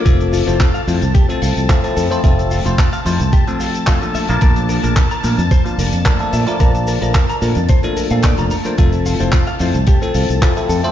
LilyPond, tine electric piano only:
\new Staff \with { instrumentName = "Tine electric piano" } { \time 4/4 \key f \major \tempo 4 = 110 <f a c' a' e''>8. <f a c' e' c''>16 r8 <f a c' e' c''>16 r8 <f a c' a'>8. <f a c' e' a'>16 <f a c' e' a'>8 <f a c' e' c''>16 | <f a c' a' e''>8. <f a c' e' c''>16 r8 <f a c' e' c''>16 r8 <f a c' a'>8. <f a c' e' a'>16 <f a bes d' a'>8 <f a bes d' bes'>16 | <f bes d' a''>8. <f a bes d' bes'>16 r8 <f a bes d' bes'>16 r8 <f bes d'>8. <f a bes d' a'>16 <f a bes d' a'>8 <f a bes d' bes'>16 | <f bes d' a''>8. <f a bes d' bes'>16 r8 <f a bes d' bes'>16 r8 <f a bes d' a'>8 <f a bes d' a'>8 <f a bes d' bes'>16 r16 <f a bes d' c''>16 |
<f a c' a' e''>8. <f a c' e' c''>16 r8 <f a c' e' c''>16 r8 <f a c' a'>8. <f a c' e' a'>16 <f a c' e' a'>8 <f a c' e' c''>16 | }